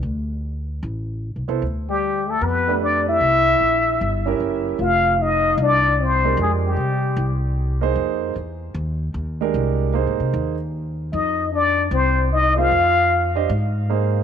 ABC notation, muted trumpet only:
X:1
M:4/4
L:1/8
Q:"Swing" 1/4=152
K:Ddor
V:1 name="Muted trumpet"
z8 | z G2 A B2 d e- | e6 z2 | [K:Fdor] f2 e2 d2 c2 |
A G4 z3 | z8 | z8 | e2 d2 c2 e f- |
f3 z4 z |]